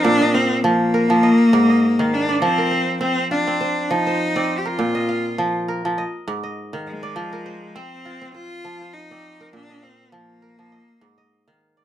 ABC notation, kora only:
X:1
M:4/4
L:1/16
Q:"Swing 16ths" 1/4=101
K:Fdor
V:1 name="Kora"
B e f3 z B2 e3 e2 f2 d- | d B c3 z F2 c3 c2 d2 B- | B e f3 z B2 e3 e2 f2 d- | d B c3 z F2 c3 c2 d2 B- |
B e f3 z B2 e3 e2 f2 d |]
V:2 name="Kora" clef=bass
B,,2 z2 F,2 z F, z2 A,,2 z E,2 z | F,2 z2 C2 z C2 z F,2 z C2 z | B,,2 z2 F,2 z F, z2 A,,2 z E,2 z | F,2 z2 C2 z C2 z F,2 z C2 z |
B,,2 z2 F,2 z F, z2 A,,2 z E,2 z |]